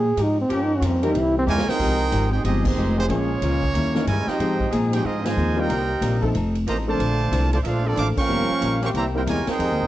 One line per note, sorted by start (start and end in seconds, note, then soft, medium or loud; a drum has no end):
0.00 0.16 A#2 loud
0.00 0.24 G#4 loud
0.17 0.49 G#2 loud
0.17 0.39 F3 medium
0.17 0.39 G#3 medium
0.17 0.39 D#4 medium
0.17 0.40 G4 medium
0.17 hi-hat pedal medium
0.17 ride medium
0.23 0.40 D#4 loud
0.41 0.56 C4 loud
0.49 0.71 G2 soft
0.49 0.81 G2 medium
0.49 0.72 F3 medium
0.49 0.99 F3 loud
0.49 0.99 A#3 medium
0.49 0.72 A#3 medium
0.49 0.99 C#4 medium
0.49 0.73 C#4 medium
0.49 0.99 G4 loud
0.49 ride medium
0.54 0.65 C#4 medium
0.64 0.77 D#4 loud
0.75 0.89 C#4 loud
0.81 1.13 F2 loud
0.81 1.04 G2 medium
0.81 1.04 F3 medium
0.81 1.05 A#3 medium
0.81 1.05 C#4 medium
0.81 hi-hat pedal medium
0.81 ride loud
0.87 1.07 C4 loud
1.02 1.45 E3 medium
1.02 1.11 E3 loud
1.02 1.45 G3 medium
1.02 1.45 A#3 medium
1.02 1.11 A#3 loud
1.02 1.45 C4 medium
1.02 1.11 C4 loud
1.02 1.20 D#4 loud
1.02 1.45 G4 medium
1.02 1.11 A#4 loud
1.02 ride medium
1.14 1.46 C2 medium
1.14 1.36 C3 medium
1.14 1.37 G3 medium
1.14 1.37 A#3 soft
1.14 1.38 E4 medium
1.14 ride medium
1.19 1.37 E4 loud
1.38 1.45 C4 loud
1.46 1.66 E2 medium
1.46 1.68 C3 medium
1.46 1.60 E3 medium
1.46 1.69 G3 medium
1.46 1.66 G#3 loud
1.46 1.60 A#3 medium
1.46 1.69 A#3 medium
1.46 1.61 C4 medium
1.46 1.70 E4 medium
1.46 1.67 F4 loud
1.46 1.61 G4 loud
1.46 1.67 A#4 loud
1.46 1.67 C#5 loud
1.46 1.67 G#5 loud
1.46 hi-hat pedal medium
1.58 snare medium
1.67 2.30 C4 loud
1.67 2.30 D#4 loud
1.67 2.32 D#4 loud
1.67 2.32 G#4 loud
1.67 2.33 A#4 loud
1.67 2.32 C5 loud
1.67 2.32 G5 loud
1.67 muted upright bass stroke soft
1.67 snare loud
1.79 2.11 C2 medium
1.79 2.01 F3 medium
1.79 1.98 F3 medium
1.79 1.98 G#3 medium
1.79 2.02 G#3 medium
1.79 1.98 C4 medium
1.79 1.98 D#4 medium
1.79 2.02 D#4 medium
1.79 1.98 G4 medium
1.79 2.02 G4 medium
1.79 kick medium
1.79 crash medium
2.11 2.43 G#1 medium
2.11 2.33 F3 medium
2.11 2.34 G#3 medium
2.11 2.34 D#4 medium
2.11 2.34 G4 medium
2.11 hi-hat pedal medium
2.11 ride medium
2.31 2.43 C4 medium
2.31 2.43 D#4 medium
2.31 2.44 D#4 medium
2.31 2.43 G4 medium
2.31 2.44 G#4 medium
2.31 2.44 C5 medium
2.31 2.44 G5 loud
2.44 2.76 G1 loud
2.44 2.63 F3 medium
2.44 2.66 F3 soft
2.44 2.63 G#3 medium
2.44 2.67 G#3 medium
2.44 2.63 C4 medium
2.44 2.64 C4 medium
2.44 2.63 D#4 medium
2.44 2.67 D#4 soft
2.44 2.64 G4 medium
2.44 2.68 G4 medium
2.44 2.64 G#4 medium
2.44 2.64 D#5 medium
2.44 ride medium
2.65 2.96 D#3 medium
2.65 2.96 G#3 medium
2.65 2.98 G#3 medium
2.65 2.96 C4 medium
2.65 2.98 D#4 medium
2.65 2.98 G4 medium
2.65 2.98 C5 medium
2.65 kick loud
2.65 crash loud
2.76 3.08 F1 loud
2.76 2.99 F3 medium
2.76 2.99 G#3 medium
2.76 2.99 D#4 medium
2.76 2.99 G4 medium
2.76 hi-hat pedal medium
2.97 3.03 D#3 medium
2.97 3.40 F3 loud
2.97 3.02 G#3 medium
2.97 3.04 G#3 medium
2.97 3.40 A#3 medium
2.97 3.02 C4 medium
2.97 3.40 C#4 medium
2.97 3.04 D#4 medium
2.97 3.04 G4 medium
2.97 3.40 G#4 loud
2.97 3.04 C5 loud
3.09 3.41 A#1 medium
3.09 3.31 A#2 medium
3.09 3.70 F3 medium
3.09 3.28 F3 medium
3.09 3.28 G#3 medium
3.09 3.70 G#3 medium
3.09 3.32 G#3 medium
3.09 3.28 A#3 medium
3.09 4.03 A#3 medium
3.09 4.03 C#4 medium
3.09 3.28 C#4 medium
3.09 3.32 C#4 medium
3.09 3.71 F4 medium
3.09 3.33 F4 medium
3.09 3.28 G#4 medium
3.09 3.71 G#4 medium
3.09 4.03 C#5 loud
3.09 ride medium
3.41 3.73 C#2 medium
3.41 3.64 A#2 medium
3.41 3.64 G#3 medium
3.41 3.64 C#4 medium
3.41 3.65 F4 medium
3.41 hi-hat pedal medium
3.41 ride medium
3.63 kick medium
3.74 4.06 D#2 loud
3.74 3.96 D#3 soft
3.74 3.97 G3 medium
3.74 3.97 C#4 medium
3.74 ride medium
3.78 3.98 E4 medium
3.95 4.06 E3 medium
3.95 4.06 A#3 medium
3.95 4.06 C#4 medium
3.95 4.06 D#4 medium
3.95 4.06 A#4 medium
3.95 snare medium
4.06 4.26 G2 loud
4.06 4.28 D#3 medium
4.06 4.29 G3 medium
4.06 4.27 G#3 medium
4.06 4.29 C#4 medium
4.06 4.28 E4 medium
4.06 4.30 E4 medium
4.06 4.28 A#4 medium
4.06 4.28 C#5 medium
4.06 4.28 G#5 loud
4.06 hi-hat pedal medium
4.06 ride medium
4.27 4.70 F3 loud
4.27 4.70 G#3 loud
4.27 4.70 C4 medium
4.27 4.73 C4 medium
4.27 4.69 D#4 medium
4.27 4.72 D#4 loud
4.27 4.72 F4 medium
4.27 4.72 G4 medium
4.27 4.73 C5 loud
4.27 4.73 D#5 loud
4.27 4.73 G5 loud
4.27 muted upright bass stroke soft
4.27 snare soft
4.38 4.61 G#2 medium
4.38 4.71 G#2 medium
4.38 4.58 F3 medium
4.38 4.61 F3 medium
4.38 4.58 G#3 medium
4.38 4.58 C4 medium
4.38 4.62 C4 medium
4.38 4.58 D#4 medium
4.38 4.62 D#4 medium
4.38 4.58 G#4 medium
4.38 ride medium
4.60 kick medium
4.71 4.94 G#2 medium
4.71 5.03 A#2 loud
4.71 5.20 F3 loud
4.71 4.94 F3 medium
4.71 5.20 C4 medium
4.71 4.95 C4 medium
4.71 5.20 D#4 medium
4.71 4.95 D#4 medium
4.71 5.20 G#4 loud
4.71 hi-hat pedal medium
4.71 ride medium
4.91 5.03 F3 medium
4.91 5.03 G#3 medium
4.91 5.03 C4 medium
4.91 5.04 D#4 medium
4.91 5.04 G4 medium
4.91 5.04 G#4 medium
4.91 5.04 C5 medium
4.91 5.04 G5 loud
4.91 ride medium
5.03 5.26 G#2 medium
5.03 5.36 G#2 medium
5.03 5.26 F3 soft
5.03 5.23 F3 medium
5.03 5.25 C4 medium
5.03 5.27 C4 medium
5.03 5.25 D#4 medium
5.03 5.27 D#4 medium
5.03 5.24 F4 medium
5.03 5.25 G#4 medium
5.03 5.24 D#5 loud
5.25 5.57 D#3 medium
5.25 5.57 F3 medium
5.25 5.57 G#3 medium
5.25 5.58 F4 medium
5.25 5.58 C5 medium
5.25 5.58 D#5 medium
5.25 5.58 G#5 loud
5.25 snare loud
5.25 ride medium
5.36 5.68 D#2 loud
5.36 5.58 G#2 medium
5.36 5.59 F3 medium
5.36 5.59 C4 medium
5.36 5.59 D#4 medium
5.36 hi-hat pedal medium
5.56 5.68 G3 medium
5.56 5.68 A#3 medium
5.56 6.23 A#3 medium
5.56 5.68 C4 medium
5.56 5.68 D#4 medium
5.56 6.22 D#4 medium
5.56 6.24 D#4 medium
5.56 5.68 F4 medium
5.56 6.23 G4 medium
5.56 6.24 A#4 medium
5.60 6.24 C5 medium
5.60 6.24 G5 loud
5.68 6.01 C2 medium
5.68 5.91 C3 medium
5.68 5.83 G3 medium
5.68 5.91 G3 medium
5.68 5.92 A#3 medium
5.68 5.83 C4 medium
5.68 5.83 D#4 medium
5.68 5.92 D#4 medium
5.68 5.83 A#4 loud
5.68 ride medium
6.01 6.33 A#1 loud
6.01 6.23 C3 medium
6.01 6.24 G3 medium
6.01 6.24 A#3 medium
6.01 6.24 D#4 medium
6.01 hi-hat pedal medium
6.01 ride medium
6.22 6.33 F3 medium
6.22 6.31 F3 medium
6.22 6.34 A3 medium
6.22 6.34 C4 medium
6.22 6.31 C4 medium
6.22 6.30 D#4 medium
6.22 6.34 D#4 medium
6.22 6.30 A4 loud
6.22 6.34 A4 medium
6.22 kick medium
6.33 6.66 F1 medium
6.33 6.56 F3 medium
6.33 6.56 C4 medium
6.33 6.57 D#4 medium
6.33 6.57 A4 medium
6.33 ride medium
6.55 ride medium
6.67 6.98 A1 loud
6.67 6.89 F3 medium
6.67 6.76 A#3 medium
6.67 6.89 C4 medium
6.67 6.89 D#4 medium
6.67 6.77 G4 medium
6.67 6.90 A4 medium
6.67 6.76 C5 medium
6.67 6.76 D#5 medium
6.67 6.77 A#5 medium
6.67 hi-hat pedal medium
6.67 ride medium
6.87 7.49 D3 medium
6.87 6.98 F3 medium
6.87 7.49 F3 medium
6.87 7.48 A3 medium
6.87 6.98 A#3 medium
6.87 6.98 C4 medium
6.87 6.99 D4 medium
6.87 7.49 F4 medium
6.87 6.99 A4 medium
6.87 7.49 C5 medium
6.87 7.49 D5 loud
6.87 7.49 A5 loud
6.98 7.31 A#1 medium
6.98 7.20 A#3 medium
6.98 7.21 D4 medium
6.98 7.21 A4 medium
6.98 7.22 C5 medium
6.98 ride medium
7.31 7.63 C2 loud
7.31 7.53 A#3 medium
7.31 7.54 D4 medium
7.31 7.54 A4 medium
7.31 7.54 C5 medium
7.31 hi-hat pedal medium
7.31 ride medium
7.52 7.57 D3 medium
7.52 7.56 F3 medium
7.52 7.56 A3 medium
7.52 7.57 F4 medium
7.52 7.57 C5 medium
7.52 7.58 D5 medium
7.52 7.57 A5 loud
7.52 ride medium
7.63 7.96 A#1 medium
7.63 7.85 A3 medium
7.63 7.86 A#3 soft
7.63 7.85 D4 medium
7.63 7.87 D4 medium
7.63 7.86 D4 medium
7.63 7.85 F4 medium
7.63 7.85 A4 medium
7.63 7.86 C5 medium
7.63 7.65 E5 medium
7.63 7.86 F5 loud
7.63 ride medium
7.67 7.87 A4 soft
7.67 7.88 C5 medium
7.86 8.28 D3 loud
7.86 7.95 F3 medium
7.86 7.95 A3 medium
7.86 8.27 A#3 loud
7.86 8.28 C4 medium
7.86 7.98 C4 medium
7.86 7.95 D4 medium
7.86 7.98 F4 medium
7.86 8.28 A4 loud
7.86 7.98 A4 medium
7.86 7.98 D5 medium
7.96 8.16 A1 medium
7.96 8.06 F3 medium
7.96 8.06 A3 loud
7.96 8.19 A#3 medium
7.96 8.06 D4 loud
7.96 8.19 D4 medium
7.96 8.19 A4 medium
7.96 8.07 C5 loud
7.96 8.20 C5 medium
7.96 8.08 F5 loud
7.96 8.08 A5 medium
7.96 8.07 D6 loud
7.96 hi-hat pedal medium
7.96 ride medium
8.17 8.78 F3 loud
8.17 8.78 A#3 loud
8.17 8.78 C#4 loud
8.17 8.79 A#4 loud
8.17 8.79 F5 loud
8.17 8.79 G5 loud
8.17 8.79 C#6 loud
8.17 muted upright bass stroke soft
8.17 kick medium
8.17 crash medium
8.28 8.48 G1 medium
8.28 8.47 G3 medium
8.28 8.51 G3 medium
8.28 8.47 A#3 medium
8.28 8.48 C#4 medium
8.28 8.51 C#4 medium
8.28 8.47 F4 medium
8.28 8.52 F4 medium
8.28 8.48 A#4 medium
8.33 8.53 A#4 medium
8.50 muted upright bass stroke soft
8.61 8.93 A#1 medium
8.61 8.84 G3 medium
8.61 8.84 C#4 medium
8.61 8.84 F4 medium
8.61 8.84 A#4 medium
8.61 hi-hat pedal medium
8.61 ride medium
8.82 9.25 E3 medium
8.82 8.88 F3 medium
8.82 8.88 A#3 medium
8.82 9.25 A#3 medium
8.82 9.25 C4 medium
8.82 8.88 C#4 medium
8.82 9.25 G4 loud
8.82 8.89 A#4 medium
8.82 8.89 F5 medium
8.82 8.89 G5 medium
8.82 8.89 C#6 loud
8.82 snare soft
8.82 ride medium
8.94 9.26 C2 medium
8.94 9.16 C3 soft
8.94 9.04 E3 medium
8.94 9.04 G3 medium
8.94 9.05 A#3 medium
8.94 9.17 A#3 medium
8.94 9.17 E4 medium
8.94 9.05 G4 medium
8.94 9.18 G4 medium
8.94 9.05 C5 medium
8.94 9.05 E5 medium
8.94 9.05 A#5 medium
8.94 ride medium
9.14 9.25 G3 medium
9.14 9.26 A#3 medium
9.14 9.20 A#3 medium
9.14 9.26 C4 medium
9.14 9.21 E4 medium
9.14 9.26 E4 medium
9.14 9.22 E4 medium
9.14 9.21 G4 medium
9.14 9.26 A#4 medium
9.14 9.22 A#4 medium
9.14 9.22 C5 medium
9.14 9.22 G5 medium
9.27 9.46 E2 loud
9.27 9.48 C3 medium
9.27 9.46 G#3 medium
9.27 9.49 A#3 medium
9.27 9.49 E4 medium
9.27 9.47 F4 medium
9.27 9.50 G4 medium
9.27 9.47 A#4 medium
9.27 9.47 C#5 medium
9.27 9.47 G#5 loud
9.27 hi-hat pedal medium
9.27 ride medium
9.46 9.87 C4 loud
9.46 9.87 D#4 loud
9.46 9.87 G#4 medium
9.46 9.87 A#4 medium
9.46 9.87 C5 loud
9.46 9.87 G5 loud
9.46 muted upright bass stroke soft
9.46 snare medium
9.46 ride medium
9.59 9.71 F2 medium
9.59 9.81 F3 medium
9.59 9.87 F3 medium
9.59 9.87 G#3 medium
9.59 9.81 G#3 medium
9.59 9.87 D#4 medium
9.59 9.82 D#4 medium
9.59 9.82 G4 medium
9.59 9.87 G#4 loud
9.59 ride medium
9.71 9.80 D#2 medium
9.81 9.87 C2 medium